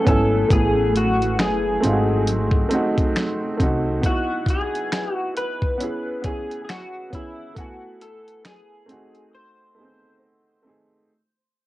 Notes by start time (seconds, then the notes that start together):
Already playing: F#3 A3 B3 C#4 E4 G#4 G#5
0.04 G#1 B3 C#4 E4 A4, kick, closed hi-hat
0.10 G#5
0.49 A1 F#3 A3 B3 E4, kick, closed hi-hat
0.53 G#4
0.96 F#4, closed hi-hat
1.22 closed hi-hat
1.39 F#1 G#4, finger snap, snare, closed hi-hat
1.81 G#1 A3 C4 D#4 G#4, closed hi-hat
1.86 F4
1.93 F#4
2.27 closed hi-hat
2.51 kick
2.69 A3 C4 D#4, closed hi-hat
2.74 F#4
2.98 kick, closed hi-hat
3.16 finger snap, snare, closed hi-hat
3.57 C2 A3 C4 D#4, kick, closed hi-hat
3.63 F#4
4.01 B3 D#4 E4, kick, closed hi-hat
4.06 F#4
4.46 kick, closed hi-hat
4.50 G#4
4.75 closed hi-hat
4.92 finger snap, snare, closed hi-hat
5.14 F#4
5.37 B4, closed hi-hat
5.62 kick
5.78 B3 C#4 E4, closed hi-hat
5.83 G#4
6.22 B3 C#4 E4 G#4, kick, closed hi-hat
6.27 G#4
6.51 closed hi-hat
6.65 G#4
6.69 F#4, finger snap, snare, closed hi-hat
7.10 B3 C#4 E4, kick, closed hi-hat
7.15 E4 G#4
7.55 A3 B3 E4 F#4, kick, closed hi-hat
7.60 G#5
8.01 A4, closed hi-hat
8.28 closed hi-hat
8.45 G#4, finger snap, snare, closed hi-hat
8.86 A3 C4 D#4, closed hi-hat
8.92 F#4
9.15 closed hi-hat
9.35 C5
9.75 A3 B3 D#4
9.80 C4 G#4
10.63 A3 C4 D#4
10.69 G#4